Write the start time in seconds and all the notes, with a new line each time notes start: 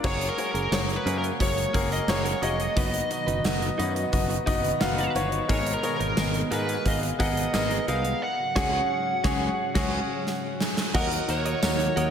0.03 F#1 C#3 F#3 G#3 A#3 C#4 F#4 G#4 A#4 C#5, kick, crash, tambourine
0.21 muted clean electric guitar stroke, closed hi-hat, tambourine
0.29 A#4
0.37 A#3 F#4 G#4 C#5, muted clean electric guitar stroke, closed hi-hat, tambourine
0.51 F#1 C#4 G#4 A#4, closed hi-hat
0.71 F#1 A#3 F#4 G#4 C#5, snare, tambourine
0.89 muted clean electric guitar stroke, closed hi-hat
0.97 B4
1.05 F#2 A#3 C#4 F#4 G#4 A#4 C#5, closed hi-hat, tambourine
1.18 A#4
1.23 muted clean electric guitar stroke, closed hi-hat, tambourine
1.40 F#1 A#3 F#4 G#4 C#5, muted clean electric guitar stroke, kick, closed hi-hat, tambourine
1.57 muted clean electric guitar stroke, closed hi-hat, tambourine
1.73 F#1 A#3 C#4 F#4 G#4 A#4, kick, closed hi-hat, tambourine
1.91 D#5, muted clean electric guitar stroke, closed hi-hat, tambourine
2.08 F#1 A#3 F#4 G#4 C#5, muted clean electric guitar stroke, snare, tambourine
2.25 C#4 G#4 A#4, closed hi-hat
2.42 F1 A#3 C#4 F#4 G#4 A#4 C#5 D#5, closed hi-hat, tambourine
2.59 muted clean electric guitar stroke, closed hi-hat
2.76 F#1 B2 D#3 B3 D#4 F#4 B4 D#5, kick, closed hi-hat, tambourine
2.93 muted clean electric guitar stroke, closed hi-hat, tambourine
3.10 B3 D#4 F#4 D#5, muted clean electric guitar stroke, closed hi-hat, tambourine
3.27 F#1 D#4 F#4 B4, closed hi-hat
3.44 F#1 B3 D#4 F#4 D#5, snare, tambourine
3.61 muted clean electric guitar stroke, closed hi-hat
3.78 F#2 B3 D#4 F#4 B4 D#5, closed hi-hat, tambourine
3.95 muted clean electric guitar stroke, closed hi-hat, tambourine
4.12 F#1 B3 D#4 F#4 D#5, muted clean electric guitar stroke, kick, closed hi-hat, tambourine
4.30 muted clean electric guitar stroke, closed hi-hat
4.46 F#1 B3 D#4 F#4 B4 D#5, kick, closed hi-hat, tambourine
4.64 muted clean electric guitar stroke, closed hi-hat, tambourine
4.80 F#1 B3 D#4 F#4 F5, muted clean electric guitar stroke, snare, tambourine
4.98 D#4 F#4 B4, closed hi-hat
5.14 G1 B3 D#4 F#4 B4 C#5, closed hi-hat, tambourine
5.32 muted clean electric guitar stroke, closed hi-hat
5.48 G#1 G#2 B2 G#3 B3 D#4 G#4 A#4 C#5 D#5, kick, closed hi-hat, tambourine
5.66 muted clean electric guitar stroke, closed hi-hat, tambourine
5.74 A#4
5.83 B3 G#4 A#4 C#5, muted clean electric guitar stroke, closed hi-hat, tambourine
5.97 G#1 B3 D#4 A#4, closed hi-hat
6.17 G#1 B3 G#4 A#4 D#5, snare, tambourine
6.33 muted clean electric guitar stroke, closed hi-hat
6.51 G#2 B3 D#4 G#4 A#4 B4 D#5, closed hi-hat, tambourine
6.68 muted clean electric guitar stroke, closed hi-hat, tambourine
6.85 G#1 B3 G#4 A#4 D#5 F5, muted clean electric guitar stroke, kick, closed hi-hat, tambourine
7.03 muted clean electric guitar stroke, closed hi-hat, tambourine
7.19 G#1 B3 D#4 G#4 A#4 D#5 F#5, kick, closed hi-hat, tambourine
7.37 closed hi-hat, tambourine
7.53 G#1 B3 G#4 A#4 D#5, muted clean electric guitar stroke, snare, tambourine
7.71 B3 D#4 A#4, closed hi-hat
7.87 C2 B3 D#4 G#4 A#4 D#5 F5, closed hi-hat, tambourine
8.04 muted clean electric guitar stroke, closed hi-hat
8.21 G#2 C#3 F#3 C#4 F#4 F#5
8.55 C#2 C#4 F#4 G#4 C#5 F#5, kick, snare, crash
9.24 C#2 C#4 F#4 G#4 C#5, kick, snare
9.74 C#2 C#4 F#4 G#4 C#5 F#5, kick, snare, crash
10.27 snare
10.61 snare
10.77 snare
10.94 D#2 A#2 D#3 F#3 D#4 F#4 A#4 D#5 F#5, kick, crash, tambourine
11.11 muted clean electric guitar stroke, closed hi-hat
11.28 D#2 D#4 F#4 A#4 C#5 F#5, muted clean electric guitar stroke, closed hi-hat, tambourine
11.45 F#4 A#4 D#5, closed hi-hat
11.62 D#2 D#4 F#4 A#4 F#5, snare, tambourine
11.80 muted clean electric guitar stroke, closed hi-hat
11.96 D#2 D#4 F#4 A#4 D#5 F#5, closed hi-hat, tambourine